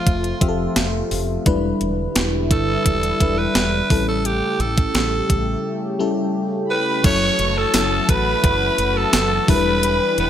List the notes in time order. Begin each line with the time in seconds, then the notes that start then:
Already playing: F3 A3 C4 F4 A4 E5
0.07 F1, kick, closed hi-hat
0.24 closed hi-hat
0.41 F1 F3 C4 G4 E5, kick, closed hi-hat
0.49 A4
0.76 F1, snare, closed hi-hat
1.11 F1, open hi-hat
1.46 E1 D3 G3 D4 E4 B4, kick, closed hi-hat
1.81 E1, closed hi-hat
2.16 E1, snare, closed hi-hat
2.51 G1 A4, kick, closed hi-hat
2.86 E1, kick, closed hi-hat
3.03 closed hi-hat
3.20 E1 G3 D4 E4 B4, kick, closed hi-hat
3.38 B4
3.55 E1, snare, closed hi-hat
3.90 A1 C#3 G3 A3 C4 E4 G4 A4, kick, open hi-hat
3.97 C#4
4.08 A4
4.25 G4, closed hi-hat
4.60 A1 A4, closed hi-hat
4.77 kick, closed hi-hat
4.95 A1, snare, closed hi-hat
5.30 A1, kick, closed hi-hat
5.99 G3 C#4 E4 A4
6.70 B4 B5
7.04 F#1 E3 F#3 A3 C#4 E4 F#4 A4 C#5 C#6, kick, closed hi-hat, crash
7.39 F#1, closed hi-hat
7.57 A4 A5
7.74 F#1 F#3 C#4 E4 A4, snare, closed hi-hat, tambourine
8.09 A1 B4 B5, kick, closed hi-hat
8.44 F#1, kick, closed hi-hat
8.78 F#1, closed hi-hat
8.96 A4 A5
9.13 F#1, snare, closed hi-hat, tambourine
9.48 E1 G3 D4 E4 G4 A#4 B4 B5, kick, open hi-hat
9.56 B4
9.83 closed hi-hat
10.18 E1 B4 B5, closed hi-hat